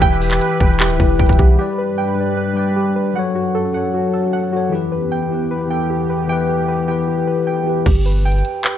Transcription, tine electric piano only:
Already playing: G4 B4
0.00 E3 E4 G4
0.05 B4
0.67 E3 E4 G4
0.73 B4
0.98 E3 E4 G4
1.03 B4
1.19 E5
1.39 F#5
1.56 G3 G4 B4
1.61 D5
2.15 G3 G4 B4
2.20 D5
2.54 G3 G4 B4
2.59 D5
3.13 F#3 F#4 A4
3.19 C#5
3.71 F#3 F#4 A4
3.77 C#5
4.51 F#3 F#4 A4
4.56 C#5
4.69 E3 E4 G4
4.75 B4
5.28 E3 E4 G4
5.34 B4
5.67 E3 E4 G4
5.73 A4
6.27 E3 E4 G4
6.32 B4
6.85 E3 E4 G4
6.91 B4
7.64 E3 E4 G4
7.69 B4

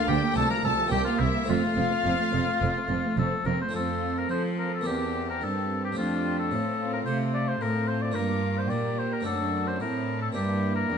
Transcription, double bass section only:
0.08 D2
0.36 C2
0.64 C2
0.91 C2
1.20 C2
1.49 F1
1.77 F1
2.05 F1
2.33 F1
2.62 F1
2.90 F1
3.18 F1
3.46 F1

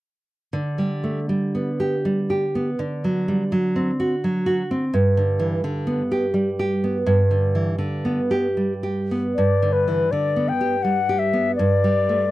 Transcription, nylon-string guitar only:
0.53 D3
0.78 G3
1.04 A3
1.29 G3
1.55 B3
1.80 G4
2.05 G3
2.30 G4
2.55 B3
2.79 D3
3.04 F#3
3.28 G3
3.52 F#3
3.76 C4
4.00 F#4
4.24 F#3
4.46 F#4
4.71 C4
4.94 G2
5.17 D3
5.39 E3
5.64 D3
5.87 B3
6.12 G4
6.34 G3
6.59 G4
6.84 B3
7.06 G2
7.31 D3
7.55 E3
7.78 D3
8.05 B3
8.31 G4
8.57 G3
8.83 G4
9.11 B3
9.38 G2
9.62 D3
9.88 E3
10.12 D3
10.36 B3
10.61 G4
10.84 G3
11.09 G4
11.33 B3
11.59 G2
11.84 G3
12.09 A3

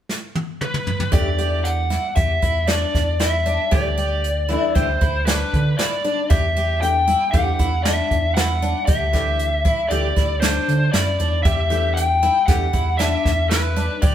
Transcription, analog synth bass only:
1.13 E2
2.17 E2
2.43 E2
2.95 E2
3.72 D2
4.76 D2
5.02 D2
5.54 D3
6.31 E2
7.34 E2
7.60 E2
8.11 E2
8.88 D2
9.91 D2
10.17 D2
10.68 D3
10.94 F#2
11.19 E2
11.45 E2
12.48 E2
12.74 E2
13.26 E2
14.03 D2

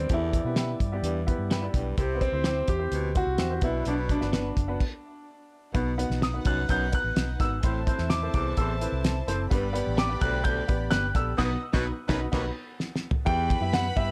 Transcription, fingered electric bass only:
0.10 E2
0.44 B2
0.80 G2
1.02 E2
1.38 G2
1.74 B1
1.98 C2
2.32 D2
2.68 E2
2.92 D2
3.27 C2
3.38 E2
3.62 B1
3.86 B1
4.22 G1
4.57 F#1
5.74 B1
6.10 B1
6.45 C2
6.69 B1
7.04 A1
7.16 B1
7.39 G#1
7.63 A1
7.99 E2
8.34 C2
8.57 A1
8.92 C2
9.27 F#1
9.51 G1
9.87 A1
10.21 B1
10.69 A1
10.91 G1
11.15 A#1
11.38 B1
11.74 B1
12.09 B1
12.33 B1
13.27 E2
13.61 F#2
13.97 G2

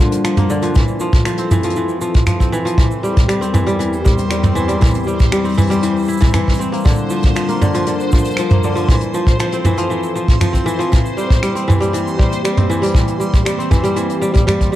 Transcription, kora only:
Already playing: D3 A#3
0.00 F3
0.24 F3
0.37 A#3
0.50 D3
0.62 F3
0.75 E3
1.01 F3
1.26 F3
1.38 C4
1.51 E3
1.64 F3
1.76 E3
2.01 F3
2.27 F3
2.40 C4
2.52 E3
2.65 F3
2.78 E3
3.03 G3
3.28 G3
3.41 C4
3.54 E3
3.67 G3
3.79 E3
4.04 G3
4.31 G3
4.43 C4
4.55 E3
4.68 G3
4.81 E3
5.07 G3
5.32 G3
5.44 C4
5.57 E3
5.70 G3
5.83 E3
6.08 E4
6.21 E3
6.34 E3
6.59 C4
6.72 A#3
6.85 D3
7.10 F3
7.35 F3
7.49 A#3
7.61 D3
7.74 F3
7.87 D3
8.13 F3
8.39 F3
8.51 A#3
8.64 D3
8.75 F3
8.90 E3
9.14 F3
9.39 F3
9.53 C4
9.66 E3
9.78 F3
9.90 E3
10.15 F3
10.41 F3
10.53 C4
10.66 E3
10.79 F3
10.92 E3
11.17 G3
11.43 G3
11.55 C4
11.68 E3
11.80 G3
11.93 E3
12.19 G3
12.44 G3
12.57 C4
12.70 E3
12.82 G3
12.95 E3
13.20 G3
13.45 G3
13.58 C4
13.71 E3
13.84 G3
13.96 E3
14.21 G3
14.34 G3
14.47 G3
14.72 G3

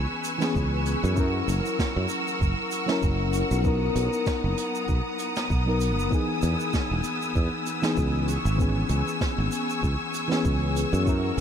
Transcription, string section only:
Already playing: B4 G#5 C#6 E6
1.18 A#4 F#5 E6
3.64 B3 A#5 D#6
6.12 G#5 E6
8.29 G#5 C#6
11.06 A#4 F#5

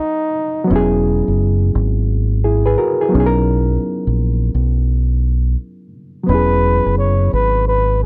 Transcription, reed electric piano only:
Already playing: F#3 B3 A#4
0.64 F#3 B3
0.70 C#4 E4
0.76 G#4
2.44 E4 G#4
2.66 G#4 B4
2.78 F#4 A#4
3.01 E4 G#4
3.09 F#3 B3
3.14 C#4 D#4
3.20 G#4
3.26 A#4
6.23 F#3 B3
6.29 C#4 E4
6.34 G#4

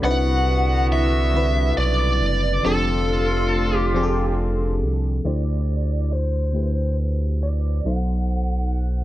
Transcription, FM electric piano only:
0.02 C3 C4 D4 D#4 B4
0.11 E4
1.34 D3 C4 D4 E4 B4
2.63 F3 C4 D4 G4 A4
3.94 F3 C4 D4 G4 G#4
4.03 A4
5.24 D3 A3 E4 G4 C5
6.53 D3 A3 E4 G4 B4
6.62 C5
7.84 B2 F#3 D#4 A4 C5

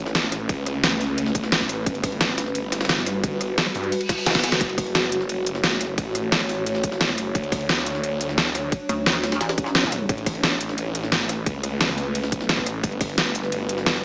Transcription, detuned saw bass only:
Already playing: A1
0.49 C#2
1.35 B1
1.69 A1
1.86 G1
3.24 G1
3.75 G2
4.61 F#1
5.98 A1
6.84 G1
7.18 F#1
7.35 D2
10.09 A1
11.46 C#2
12.32 B1
12.66 A1
12.84 G1

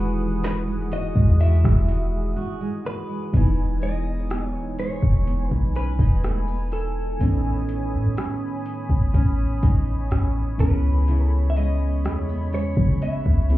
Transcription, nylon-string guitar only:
Already playing: E3 G#3 D#4 F#4
0.43 F#4
0.67 G#3
0.92 F#4
1.16 G#3
1.40 E3 F#4
1.64 G#3
1.88 F#4
2.36 F#4
2.61 G#3
2.85 F#4
3.09 G#3
3.33 E3 D#4
3.82 G#3
4.30 B3
4.79 G#3
5.27 B3
5.75 C#4
5.99 D#4
6.23 A3
6.47 B3
7.20 A2 D#4
8.17 C#4
9.14 C#4
9.62 D#4
10.11 C#4
10.59 C#3
11.08 C#3 E4
11.56 G#3
12.05 A3
12.29 B3
12.53 G#3
13.02 B3
13.50 E4

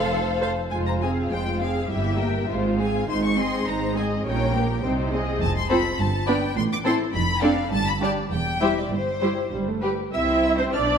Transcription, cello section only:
Already playing: F2
0.72 F2
1.32 F2
1.91 G2
2.49 G#2
3.09 G#2
3.67 G#2
4.26 A#2
4.84 C3
5.42 F2
5.99 G2
6.57 A2
7.14 F2
7.72 G2
8.30 E2
8.91 G2
9.53 G2
10.13 E4
10.57 C4
10.72 D4

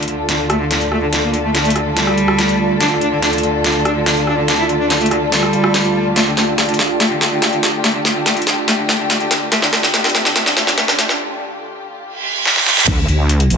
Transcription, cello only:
0.08 D3
0.29 D3
0.39 D3
0.50 A3
0.60 D3
0.71 D3
0.81 D3
0.92 A3
1.02 D3
1.13 D3
1.23 A#3
1.34 D3
1.44 A3
1.55 D3
1.65 A3
1.76 D3
1.86 D3
1.97 G3
2.81 D4
2.91 D3
3.01 D4
3.12 D3
3.22 D4
3.33 D3
3.43 D3
3.64 D3
3.75 D3
3.85 D4
3.96 D3
4.06 D3
4.17 D3
4.27 D4
4.38 D3
4.48 D3
4.59 E4
4.69 D3
4.80 D4
4.90 D3
5.01 A3
5.11 D3
5.22 D3
5.32 G3
6.16 A3
6.27 D3
6.37 A3
6.48 D3
6.58 A3
6.69 D3
6.79 D3
7.00 A3
7.11 D3
7.21 A3
7.32 D3
7.42 A3
7.53 D3
7.63 D3
7.84 A3
7.95 D3
8.05 A3
8.16 D3
8.26 A3
8.37 D3
8.47 D3
8.68 A3
8.79 D3
8.89 A3
9.00 D3
9.10 A3
9.21 D3
9.31 D3
9.52 A3
9.62 D3
9.73 A3
9.83 D3
9.94 A3
10.04 D3
10.15 A3
10.25 D3
10.36 A3
10.46 D3
10.57 A3
10.67 D3
10.78 A3
10.88 D3
10.99 A3
11.09 D3

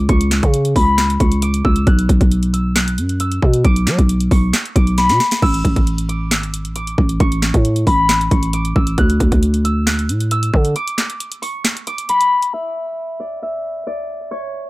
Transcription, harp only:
Already playing: D6 E6
0.09 C#6
0.76 B5
1.20 C#6
1.42 D6
1.65 E6
1.87 F#6
2.53 E6
2.76 F#6
3.20 E6
3.64 D6
4.31 C#6
4.76 D6
4.98 B5
5.42 E6
6.09 D6
6.31 E6
6.76 D6
7.20 C#6
7.87 B5
8.31 C#6
8.54 D6
8.76 E6
8.98 F#6
9.65 E6
9.87 F#6
10.31 E6
10.76 D6
11.42 C#6
11.87 D6
12.09 B5
12.54 E5
13.20 D5
13.43 E5
13.87 D5
14.31 C#5

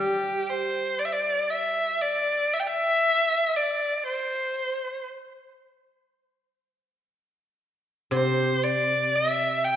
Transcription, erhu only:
0.00 G4
0.50 C5
0.99 D5
1.05 E5
1.13 D5
1.50 E5
2.02 D5
2.54 E5
2.60 G5
2.67 E5
3.56 D5
4.07 C5
8.14 C5
8.64 D5
9.15 E5
9.65 G5

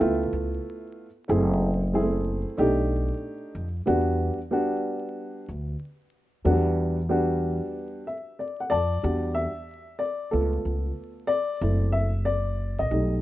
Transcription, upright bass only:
0.01 C#2
0.33 C#2
1.29 F#1
2.58 B1
3.55 F2
3.87 E2
5.49 D2
6.45 E2
8.71 F2
9.04 E2
10.33 C#2
10.65 C#2
11.61 F#1
12.80 A1
12.91 B1

